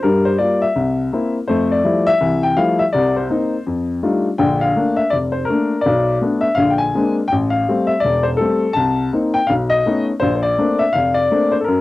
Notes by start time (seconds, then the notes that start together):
0.03 G2 G3 A#4
0.25 C5
0.38 G3 A#3 F4 D5
0.62 E5
0.76 C2
1.13 A#3 C4 E4
1.48 F2 A3 C5
1.72 D5
1.84 F3 G3 A3 E4
2.07 E5
2.21 C2 E3
2.43 G5
2.57 F3 G3 A3 E4 F5
2.79 E5
2.93 C2 C3 D5
3.16 C5
3.30 A#3 C4 D#4
3.67 F2
4.03 G3 A3 D4 D#4 F4
4.38 A#1 D3 G5
4.61 F5
4.76 A3 A#3 D4
4.96 E5
5.10 F1 D5
5.32 C5
5.45 A#4
5.49 A3 A#3 D4
5.81 D5
5.86 B1
6.21 A3 B3 D4
6.41 E5
6.55 A#1 D3 F5
6.70 G5
6.78 G#5
6.95 G#3 A#3 C4 D4
7.28 G5
7.32 A1
7.50 F5
7.68 G3 A3 C4
7.87 E5
8.00 D5
8.04 E1
8.23 C5
8.37 G3 A3 A4
8.41 C4
8.73 C2 A5
9.13 A#3 C4 D#4
9.34 G5
9.47 B1 F5
9.70 D#5
9.86 A3 B3 C#4 D#4
10.20 A#1 C5
10.36 C5
10.43 D5
10.58 A3 A#3 C4 D4
10.79 E5
10.93 F1 F5
11.14 D5
11.31 A3 A#3 C4 D4
11.52 C5
11.61 A4 A#4
11.68 F#2